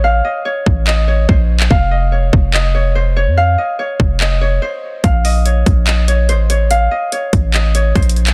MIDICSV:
0, 0, Header, 1, 4, 480
1, 0, Start_track
1, 0, Key_signature, -5, "minor"
1, 0, Tempo, 416667
1, 45, Time_signature, 4, 2, 24, 8
1, 9604, End_track
2, 0, Start_track
2, 0, Title_t, "Harp"
2, 0, Program_c, 0, 46
2, 0, Note_on_c, 0, 73, 84
2, 0, Note_on_c, 0, 75, 96
2, 45, Note_on_c, 0, 77, 106
2, 278, Note_off_c, 0, 75, 0
2, 283, Note_on_c, 0, 75, 74
2, 516, Note_off_c, 0, 73, 0
2, 521, Note_on_c, 0, 73, 84
2, 998, Note_off_c, 0, 75, 0
2, 1002, Note_on_c, 0, 75, 97
2, 1236, Note_off_c, 0, 73, 0
2, 1240, Note_on_c, 0, 73, 91
2, 1484, Note_on_c, 0, 72, 85
2, 1553, Note_off_c, 0, 73, 0
2, 1959, Note_off_c, 0, 77, 0
2, 1963, Note_on_c, 0, 77, 105
2, 2198, Note_off_c, 0, 75, 0
2, 2202, Note_on_c, 0, 75, 70
2, 2442, Note_on_c, 0, 73, 73
2, 2511, Note_off_c, 0, 72, 0
2, 2919, Note_off_c, 0, 75, 0
2, 2924, Note_on_c, 0, 75, 86
2, 3158, Note_off_c, 0, 73, 0
2, 3163, Note_on_c, 0, 73, 86
2, 3403, Note_on_c, 0, 72, 88
2, 3472, Note_off_c, 0, 73, 0
2, 3646, Note_on_c, 0, 73, 85
2, 3715, Note_off_c, 0, 72, 0
2, 3881, Note_off_c, 0, 77, 0
2, 3887, Note_on_c, 0, 77, 115
2, 4123, Note_off_c, 0, 75, 0
2, 4127, Note_on_c, 0, 75, 69
2, 4361, Note_off_c, 0, 73, 0
2, 4366, Note_on_c, 0, 73, 84
2, 4840, Note_off_c, 0, 75, 0
2, 4845, Note_on_c, 0, 75, 91
2, 5079, Note_off_c, 0, 73, 0
2, 5084, Note_on_c, 0, 73, 93
2, 5322, Note_on_c, 0, 72, 89
2, 5391, Note_off_c, 0, 73, 0
2, 5798, Note_off_c, 0, 77, 0
2, 5803, Note_on_c, 0, 77, 94
2, 6038, Note_off_c, 0, 75, 0
2, 6042, Note_on_c, 0, 75, 83
2, 6283, Note_on_c, 0, 73, 77
2, 6352, Note_off_c, 0, 72, 0
2, 6759, Note_off_c, 0, 75, 0
2, 6763, Note_on_c, 0, 75, 99
2, 7000, Note_off_c, 0, 73, 0
2, 7004, Note_on_c, 0, 73, 92
2, 7246, Note_on_c, 0, 72, 89
2, 7315, Note_off_c, 0, 73, 0
2, 7485, Note_on_c, 0, 73, 81
2, 7554, Note_off_c, 0, 72, 0
2, 7720, Note_off_c, 0, 77, 0
2, 7726, Note_on_c, 0, 77, 109
2, 7959, Note_off_c, 0, 75, 0
2, 7964, Note_on_c, 0, 75, 75
2, 8200, Note_off_c, 0, 73, 0
2, 8204, Note_on_c, 0, 73, 84
2, 8681, Note_off_c, 0, 75, 0
2, 8686, Note_on_c, 0, 75, 94
2, 8920, Note_off_c, 0, 73, 0
2, 8925, Note_on_c, 0, 73, 91
2, 9165, Note_on_c, 0, 72, 86
2, 9234, Note_off_c, 0, 73, 0
2, 9604, Note_off_c, 0, 72, 0
2, 9604, Note_off_c, 0, 75, 0
2, 9604, Note_off_c, 0, 77, 0
2, 9604, End_track
3, 0, Start_track
3, 0, Title_t, "808-style bass"
3, 0, Program_c, 1, 38
3, 0, Note_on_c, 1, 33, 98
3, 248, Note_off_c, 1, 33, 0
3, 765, Note_on_c, 1, 33, 107
3, 1456, Note_off_c, 1, 33, 0
3, 1484, Note_on_c, 1, 34, 102
3, 1945, Note_off_c, 1, 34, 0
3, 1965, Note_on_c, 1, 29, 108
3, 2656, Note_off_c, 1, 29, 0
3, 2685, Note_on_c, 1, 29, 112
3, 3766, Note_on_c, 1, 41, 101
3, 3783, Note_off_c, 1, 29, 0
3, 4107, Note_off_c, 1, 41, 0
3, 4604, Note_on_c, 1, 29, 108
3, 5295, Note_off_c, 1, 29, 0
3, 5804, Note_on_c, 1, 34, 113
3, 6496, Note_off_c, 1, 34, 0
3, 6524, Note_on_c, 1, 34, 110
3, 7245, Note_on_c, 1, 33, 100
3, 7262, Note_off_c, 1, 34, 0
3, 7929, Note_off_c, 1, 33, 0
3, 8444, Note_on_c, 1, 33, 109
3, 9136, Note_off_c, 1, 33, 0
3, 9164, Note_on_c, 1, 34, 109
3, 9604, Note_off_c, 1, 34, 0
3, 9604, End_track
4, 0, Start_track
4, 0, Title_t, "Drums"
4, 765, Note_on_c, 9, 36, 99
4, 880, Note_off_c, 9, 36, 0
4, 1005, Note_on_c, 9, 39, 119
4, 1121, Note_off_c, 9, 39, 0
4, 1484, Note_on_c, 9, 36, 86
4, 1599, Note_off_c, 9, 36, 0
4, 1844, Note_on_c, 9, 39, 102
4, 1959, Note_off_c, 9, 39, 0
4, 1964, Note_on_c, 9, 36, 110
4, 2079, Note_off_c, 9, 36, 0
4, 2685, Note_on_c, 9, 36, 108
4, 2800, Note_off_c, 9, 36, 0
4, 2925, Note_on_c, 9, 39, 117
4, 3040, Note_off_c, 9, 39, 0
4, 4605, Note_on_c, 9, 36, 104
4, 4720, Note_off_c, 9, 36, 0
4, 4844, Note_on_c, 9, 39, 118
4, 4959, Note_off_c, 9, 39, 0
4, 5804, Note_on_c, 9, 36, 115
4, 5804, Note_on_c, 9, 42, 90
4, 5919, Note_off_c, 9, 36, 0
4, 5920, Note_off_c, 9, 42, 0
4, 6045, Note_on_c, 9, 46, 73
4, 6160, Note_off_c, 9, 46, 0
4, 6285, Note_on_c, 9, 42, 82
4, 6400, Note_off_c, 9, 42, 0
4, 6524, Note_on_c, 9, 36, 105
4, 6525, Note_on_c, 9, 42, 62
4, 6640, Note_off_c, 9, 36, 0
4, 6640, Note_off_c, 9, 42, 0
4, 6764, Note_on_c, 9, 42, 65
4, 6765, Note_on_c, 9, 39, 120
4, 6880, Note_off_c, 9, 39, 0
4, 6880, Note_off_c, 9, 42, 0
4, 7006, Note_on_c, 9, 42, 70
4, 7121, Note_off_c, 9, 42, 0
4, 7245, Note_on_c, 9, 42, 77
4, 7360, Note_off_c, 9, 42, 0
4, 7486, Note_on_c, 9, 42, 86
4, 7601, Note_off_c, 9, 42, 0
4, 7725, Note_on_c, 9, 42, 90
4, 7840, Note_off_c, 9, 42, 0
4, 8205, Note_on_c, 9, 42, 80
4, 8320, Note_off_c, 9, 42, 0
4, 8445, Note_on_c, 9, 36, 102
4, 8445, Note_on_c, 9, 42, 65
4, 8560, Note_off_c, 9, 36, 0
4, 8560, Note_off_c, 9, 42, 0
4, 8685, Note_on_c, 9, 39, 118
4, 8685, Note_on_c, 9, 42, 64
4, 8800, Note_off_c, 9, 42, 0
4, 8801, Note_off_c, 9, 39, 0
4, 8925, Note_on_c, 9, 42, 74
4, 9040, Note_off_c, 9, 42, 0
4, 9164, Note_on_c, 9, 36, 82
4, 9164, Note_on_c, 9, 42, 46
4, 9244, Note_off_c, 9, 42, 0
4, 9244, Note_on_c, 9, 42, 62
4, 9279, Note_off_c, 9, 36, 0
4, 9325, Note_off_c, 9, 42, 0
4, 9325, Note_on_c, 9, 42, 79
4, 9405, Note_off_c, 9, 42, 0
4, 9405, Note_on_c, 9, 42, 49
4, 9520, Note_off_c, 9, 42, 0
4, 9524, Note_on_c, 9, 39, 104
4, 9524, Note_on_c, 9, 42, 84
4, 9604, Note_off_c, 9, 39, 0
4, 9604, Note_off_c, 9, 42, 0
4, 9604, End_track
0, 0, End_of_file